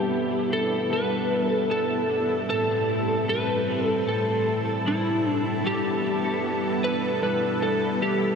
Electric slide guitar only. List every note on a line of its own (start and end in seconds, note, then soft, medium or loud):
0.00 0.53 G4 medium
0.53 0.92 A4 medium
0.93 1.52 B4 medium
1.52 1.71 A4 medium
1.71 2.49 A4 medium
2.50 3.24 A4 medium
3.29 3.88 B4 medium
3.88 4.09 A4 medium
4.09 4.89 A4 medium
4.88 5.30 E4 medium
5.30 5.42 D4 medium
5.67 6.87 G4 medium
6.84 7.22 B4 medium
7.23 7.63 B4 medium
7.62 7.99 A4 medium
8.02 8.35 G4 medium